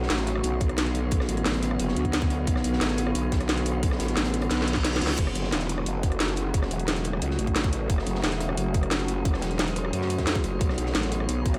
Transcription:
Already playing: synth drone D3 F#3 B3 F#4
0.03 snare
0.10 wobble bass A1, snare, closed hi-hat
0.19 snare, closed hi-hat
0.27 closed hi-hat
0.36 cross-stick
0.43 wobble bass B1, closed hi-hat
0.60 kick, closed hi-hat
0.69 cross-stick, closed hi-hat
0.78 snare, closed hi-hat
0.86 closed hi-hat
0.95 closed hi-hat
1.11 kick, closed hi-hat
1.20 cross-stick, snare
1.29 wobble bass A1, closed hi-hat
1.37 closed hi-hat
1.45 wobble bass A1, snare, closed hi-hat
1.54 closed hi-hat
1.62 closed hi-hat
1.71 cross-stick
1.79 wobble bass F#1, closed hi-hat
1.88 snare
1.97 wobble bass D2, closed hi-hat
2.05 kick, closed hi-hat
2.13 snare, closed hi-hat
2.22 kick, snare, closed hi-hat
2.30 closed hi-hat
2.47 wobble bass B1, kick, closed hi-hat
2.56 cross-stick, snare
2.64 wobble bass B1, closed hi-hat
2.73 snare
2.81 wobble bass A1, snare, closed hi-hat
2.90 snare, closed hi-hat
2.98 closed hi-hat
3.07 cross-stick
3.15 wobble bass B1, closed hi-hat
3.32 kick, snare, closed hi-hat
3.41 cross-stick, closed hi-hat
3.49 snare, closed hi-hat
3.57 closed hi-hat
3.66 closed hi-hat
3.83 kick, closed hi-hat
3.91 cross-stick, snare
3.99 wobble bass A1, snare, closed hi-hat
4.08 snare, closed hi-hat
4.17 wobble bass A1, snare, closed hi-hat
4.25 snare, closed hi-hat
4.34 snare, closed hi-hat
4.42 cross-stick, closed hi-hat
4.50 wobble bass B1, snare, closed hi-hat, reverse cymbal
4.59 snare
4.62 snare
4.68 closed hi-hat
4.73 kick, snare, closed hi-hat
4.85 snare, closed hi-hat
4.93 snare, closed hi-hat
4.96 snare
5.01 wobble bass C#2, snare, closed hi-hat
5.06 snare, closed hi-hat
5.10 snare, closed hi-hat
5.18 wobble bass F#1, synth drone C#3 F#3 A3 F#4, kick, closed hi-hat, crash
5.27 cross-stick, snare
5.35 wobble bass F#1, closed hi-hat
5.44 snare
5.52 wobble bass E1, snare, closed hi-hat
5.61 snare, closed hi-hat
5.69 closed hi-hat
5.78 cross-stick
5.86 wobble bass F#1, closed hi-hat
6.03 kick, closed hi-hat
6.12 cross-stick, closed hi-hat
6.20 snare, closed hi-hat
6.29 closed hi-hat
6.36 closed hi-hat
6.54 kick, closed hi-hat
6.62 cross-stick, snare
6.71 wobble bass E1, closed hi-hat
6.79 closed hi-hat
6.88 wobble bass E1, snare, closed hi-hat
6.96 closed hi-hat
7.04 closed hi-hat
7.13 cross-stick
7.22 wobble bass C#2, closed hi-hat
7.31 snare
7.39 wobble bass A1, closed hi-hat
7.47 kick, closed hi-hat
7.55 snare, closed hi-hat
7.64 kick, snare, closed hi-hat
7.73 closed hi-hat
7.90 wobble bass F#1, kick, closed hi-hat
7.98 cross-stick, snare
8.06 wobble bass F#1, closed hi-hat
8.15 snare
8.23 wobble bass E1, snare, closed hi-hat
8.32 snare, closed hi-hat
8.41 closed hi-hat
8.49 cross-stick
8.57 wobble bass F#1, closed hi-hat
8.74 kick, closed hi-hat
8.83 cross-stick, closed hi-hat
8.91 snare, closed hi-hat
9.00 closed hi-hat
9.08 closed hi-hat
9.25 kick, closed hi-hat
9.33 cross-stick, snare
9.42 wobble bass E1, snare, closed hi-hat
9.51 closed hi-hat
9.59 wobble bass E1, snare, closed hi-hat
9.67 closed hi-hat
9.76 closed hi-hat
9.85 cross-stick
9.93 wobble bass F#2, closed hi-hat
10.01 snare
10.10 closed hi-hat
10.18 kick, snare, closed hi-hat
10.26 snare, closed hi-hat
10.35 kick, snare, closed hi-hat
10.44 wobble bass F#1, closed hi-hat
10.61 wobble bass B1, synth drone D3 B3, kick, closed hi-hat
10.69 cross-stick, snare
10.78 wobble bass B1, closed hi-hat
10.86 snare
10.94 wobble bass A1, snare, closed hi-hat
11.03 snare, closed hi-hat
11.12 closed hi-hat
11.20 cross-stick
11.29 wobble bass B1, closed hi-hat
11.46 kick, closed hi-hat
11.54 cross-stick, closed hi-hat

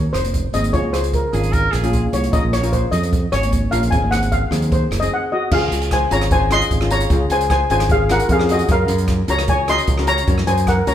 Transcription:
Already playing: steel pan C#5
0.13 fingered electric bass F1, steel pan C5, cross-stick, closed hi-hat
0.24 closed hi-hat, high conga
0.34 kick, closed hi-hat
0.53 fingered electric bass G#1, steel pan C4 D#4 G#4 D#5, closed hi-hat, high conga, low conga
0.64 closed hi-hat
0.73 fingered electric bass C#2, steel pan C#4 F4 G#4 C#5, kick, closed hi-hat
0.83 fingered electric bass C#2, high conga
0.93 steel pan C5, cross-stick, closed hi-hat
1.04 closed hi-hat
1.13 steel pan A#4, kick, closed hi-hat
1.33 fingered electric bass G#1, steel pan C#4 F4 G#4, trumpet G#4, closed hi-hat, low conga
1.43 closed hi-hat
1.53 trumpet A#4, kick, closed hi-hat
1.72 fingered electric bass A#1, trumpet G#4, cross-stick, closed hi-hat
1.83 steel pan C#4 F4 G#4, closed hi-hat, high conga
1.93 kick, closed hi-hat
2.13 fingered electric bass C2, steel pan C#5, closed hi-hat, high conga, low conga
2.24 closed hi-hat
2.32 fingered electric bass A#1, steel pan C#4 F4 A#4 D#5, kick, closed hi-hat
2.43 fingered electric bass A#1, high conga
2.53 steel pan C#5, cross-stick, closed hi-hat
2.62 steel pan C#4 F4 A#4, closed hi-hat
2.73 steel pan C5, kick, closed hi-hat
2.91 fingered electric bass F2, steel pan D#5, closed hi-hat, low conga
3.03 closed hi-hat
3.13 kick, closed hi-hat
3.32 fingered electric bass G#1, steel pan C#5, cross-stick, closed hi-hat
3.42 closed hi-hat, high conga
3.52 kick, closed hi-hat
3.71 fingered electric bass A#1, steel pan C#4 F4 A#4 F5, closed hi-hat, high conga, low conga
3.83 closed hi-hat
3.91 fingered electric bass G#1, steel pan C4 D#4 G#4 G#5, kick, closed hi-hat
4.02 fingered electric bass G#1, high conga
4.11 steel pan F#5, cross-stick, closed hi-hat
4.23 closed hi-hat
4.32 steel pan F5, kick, closed hi-hat
4.51 fingered electric bass D#2, steel pan C4 D#4 G#4, cross-stick, closed hi-hat, low conga
4.62 closed hi-hat
4.72 steel pan C5, kick, closed hi-hat
4.91 fingered electric bass F#1, cross-stick, closed hi-hat
5.00 steel pan C4 D#4 G#4 D#5, closed hi-hat, high conga
5.14 steel pan F#5
5.32 steel pan F#4 D#5
5.51 fingered electric bass C#2, steel pan C#4 F4 G#4 F5, kick, crash
5.71 fingered electric bass C#2, closed hi-hat
5.82 closed hi-hat
5.91 steel pan C5 G#5, kick, cross-stick, closed hi-hat
6.11 fingered electric bass G#1, steel pan C#4 F4 G#4 C#5 A#5, closed hi-hat
6.21 cross-stick, closed hi-hat
6.31 steel pan C5 G#5, kick, closed hi-hat
6.50 steel pan C#4 F4 G#4 D#5 C6, cross-stick, closed hi-hat
6.61 closed hi-hat
6.71 fingered electric bass G#1, kick, closed hi-hat
6.81 steel pan C#4 F4 G#4, cross-stick
6.90 steel pan C#5 A#5, closed hi-hat
7.00 closed hi-hat
7.10 fingered electric bass C#2, steel pan C#4 F4 G#4, kick, closed hi-hat
7.30 fingered electric bass C#2, steel pan C5 G#5, closed hi-hat
7.41 closed hi-hat
7.50 steel pan C5 G#5, kick, cross-stick, closed hi-hat
7.70 fingered electric bass G#1, steel pan C#4 F4 G#4 C5 G#5, closed hi-hat
7.80 cross-stick, closed hi-hat
7.89 steel pan G#4 F5, kick, closed hi-hat
8.09 steel pan C#4 F4 A#4 F#5, cross-stick, closed hi-hat
8.20 closed hi-hat
8.29 fingered electric bass F2, steel pan G#4 F5, kick, closed hi-hat
8.39 steel pan C#4 F4 G#4, cross-stick
8.49 steel pan F#4 D#5, closed hi-hat
8.59 closed hi-hat
8.68 fingered electric bass F#2, steel pan C#4 F#4 A#4 F5, kick, closed hi-hat
8.88 fingered electric bass F#2, closed hi-hat
8.98 closed hi-hat
9.08 kick, cross-stick, closed hi-hat
9.28 fingered electric bass C#2, steel pan C#4 F#4 A#4 C#5 A#5, closed hi-hat
9.38 cross-stick, closed hi-hat
9.48 steel pan C#5 G#5, kick, closed hi-hat
9.68 steel pan C#4 F#4 A#4 D#5 C6, cross-stick, closed hi-hat
9.78 closed hi-hat
9.87 fingered electric bass C#2, kick, closed hi-hat
9.98 steel pan C#4 F#4 A#4, cross-stick
10.07 steel pan C#5 A#5, closed hi-hat
10.18 closed hi-hat
10.27 fingered electric bass F#2, steel pan C#4 F#4 C#5, kick, closed hi-hat
10.38 cross-stick
10.47 fingered electric bass F#2, steel pan C5 G#5, closed hi-hat
10.58 closed hi-hat
10.67 steel pan A#4 F#5, kick, cross-stick, closed hi-hat
10.87 fingered electric bass C#2, steel pan C#4 F#4 A#4 C#5 A#5, closed hi-hat

